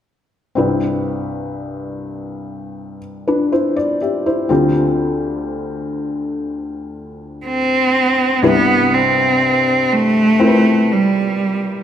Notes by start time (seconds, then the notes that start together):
0.55 C2 G2 C4 E4 B4
3.27 D4 B4
3.52 E4 C5
3.76 D5
4.01 G4 E5
4.26 E4 C5
4.49 D2 D3 C4 F4 G4
7.46 C4
8.43 C2 G2 C3 B3 E4 B4
8.94 C4
9.93 A3
10.40 C4 E4 A#4
10.48 B4
10.92 G3